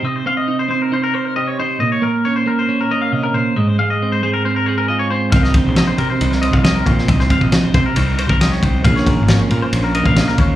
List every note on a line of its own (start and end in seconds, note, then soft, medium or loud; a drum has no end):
0.00 1.77 C3 medium
0.00 0.26 C4 medium
0.00 1.14 C5 medium
0.05 0.16 D#5 medium
0.16 0.26 C5 medium
0.26 0.68 C4 medium
0.26 0.37 F5 medium
0.37 0.59 D#5 medium
0.48 0.91 D#4 medium
0.59 0.69 C5 medium
0.69 1.83 C4 medium
0.69 0.82 C5 medium
0.82 0.93 A#4 medium
0.92 1.58 D#4 medium
0.92 1.03 C5 medium
1.03 1.14 A#4 medium
1.14 1.25 C5 medium
1.14 1.83 C5 medium
1.25 1.36 A#4 medium
1.36 1.78 G4 medium
1.36 1.47 D#5 medium
1.47 1.59 C#5 medium
1.59 1.79 D#4 medium
1.59 1.80 C5 medium
1.80 3.12 A#2 medium
1.80 1.91 D#5 medium
1.92 2.03 C#5 medium
2.02 2.46 A#3 medium
2.02 2.25 A#4 medium
2.25 2.68 C#4 medium
2.25 2.36 C#5 medium
2.36 2.47 C5 medium
2.46 3.60 A#3 medium
2.46 2.58 A#4 medium
2.59 2.80 C5 medium
2.69 3.54 C#4 medium
2.81 2.91 A#4 medium
2.91 3.60 A#4 medium
2.91 3.01 D#5 medium
3.02 3.12 F5 medium
3.12 3.34 C3 medium
3.12 3.24 D#5 medium
3.23 3.35 A#4 medium
3.34 3.57 A#2 medium
3.34 3.56 C5 medium
3.56 5.30 G#2 medium
3.56 3.68 D#5 medium
3.68 3.79 C5 medium
3.79 4.22 G#3 medium
3.79 3.90 F5 medium
3.90 4.12 D#5 medium
4.02 4.45 C4 medium
4.12 4.22 C5 medium
4.23 5.30 G#3 medium
4.23 4.33 C5 medium
4.33 4.45 A#4 medium
4.45 5.11 C4 medium
4.45 4.56 C5 medium
4.56 4.66 A#4 medium
4.66 5.31 G#4 medium
4.66 4.77 C5 medium
4.78 4.88 A#4 medium
4.88 5.31 F4 medium
4.88 4.99 D#5 medium
4.99 5.10 C#5 medium
5.10 5.34 C4 medium
5.10 5.32 C5 medium
5.32 5.63 C2 loud
5.32 7.06 C3 medium
5.32 5.55 C4 medium
5.32 5.78 D#4 medium
5.32 6.65 G4 medium
5.32 5.43 F5 medium
5.32 kick loud
5.32 ride medium
5.36 6.43 A#4 medium
5.43 5.54 D#5 medium
5.43 snare soft
5.54 5.98 C4 medium
5.54 5.77 C5 medium
5.54 kick medium
5.54 ride medium
5.66 5.86 A#1 medium
5.76 6.21 D#4 medium
5.76 5.87 D#5 medium
5.76 snare loud
5.76 ride medium
5.87 5.98 C5 medium
5.98 6.08 C3 loud
5.98 7.30 C4 medium
5.98 6.09 A#4 medium
5.98 ride medium
6.10 6.31 C5 medium
6.21 6.51 C2 loud
6.21 6.87 D#4 medium
6.21 ride medium
6.31 6.41 A#4 medium
6.31 snare soft
6.42 8.19 C5 medium
6.42 6.53 D#5 medium
6.42 ride medium
6.53 6.74 C2 medium
6.53 6.64 F5 medium
6.53 kick medium
6.64 7.07 G4 medium
6.64 6.75 D#5 medium
6.64 snare loud
6.64 ride medium
6.75 6.86 A#4 medium
6.86 7.07 A#2 medium
6.86 7.07 D#4 medium
6.86 7.08 C5 medium
6.86 kick medium
6.86 ride medium
6.98 snare soft
7.08 7.39 C2 loud
7.08 8.82 C3 medium
7.08 7.20 D#5 medium
7.08 kick loud
7.08 ride medium
7.19 7.31 C5 medium
7.19 snare soft
7.30 7.74 C4 medium
7.30 7.42 F5 medium
7.30 kick medium
7.30 ride medium
7.41 7.61 A#1 medium
7.41 7.64 D#5 medium
7.41 kick medium
7.52 7.96 D#4 medium
7.52 snare loud
7.52 ride loud
7.64 7.73 C5 medium
7.74 7.84 C3 medium
7.74 8.85 C4 medium
7.74 7.85 C5 medium
7.74 kick medium
7.74 ride medium
7.86 7.96 A#4 medium
7.96 8.27 C2 loud
7.96 8.63 D#4 medium
7.96 8.07 C5 medium
7.96 ride loud
8.07 8.18 A#4 medium
8.18 8.29 C5 medium
8.18 8.87 C5 medium
8.18 ride medium
8.29 8.50 C2 medium
8.29 8.40 A#4 medium
8.29 kick medium
8.40 8.82 G4 medium
8.40 8.52 D#5 medium
8.40 snare loud
8.40 ride medium
8.52 8.62 C#5 medium
8.52 snare soft
8.62 8.83 C2 medium
8.62 8.83 D#4 medium
8.62 8.84 C5 medium
8.62 kick medium
8.62 ride medium
8.84 9.15 A#1 loud
8.84 10.56 A#2 medium
8.84 9.07 A#3 medium
8.84 9.28 C#4 medium
8.84 10.17 F4 medium
8.84 9.95 G#4 medium
8.84 8.95 F5 medium
8.84 kick loud
8.84 ride medium
8.96 9.07 C#5 medium
8.96 snare soft
9.07 9.49 A#3 medium
9.07 9.29 A#4 medium
9.07 kick medium
9.07 ride medium
9.18 9.38 G#1 medium
9.28 9.71 C#4 medium
9.28 9.40 C#5 medium
9.28 snare loud
9.28 ride medium
9.40 9.51 C5 medium
9.50 9.61 A#2 loud
9.50 10.56 A#3 medium
9.50 9.62 A#4 medium
9.50 ride medium
9.62 9.83 C5 medium
9.72 10.03 A#1 medium
9.72 10.38 C#4 medium
9.72 ride loud
9.84 9.95 A#4 medium
9.95 10.56 A#4 medium
9.95 10.06 D#5 medium
9.95 ride medium
10.06 10.26 A#1 medium
10.06 10.17 F5 medium
10.06 kick medium
10.16 10.56 F4 medium
10.16 10.28 D#5 medium
10.16 snare loud
10.16 ride medium
10.27 10.39 A#4 medium
10.27 snare soft
10.38 10.56 D#2 medium
10.38 10.56 C#4 medium
10.38 10.56 C5 medium
10.38 kick medium
10.38 ride medium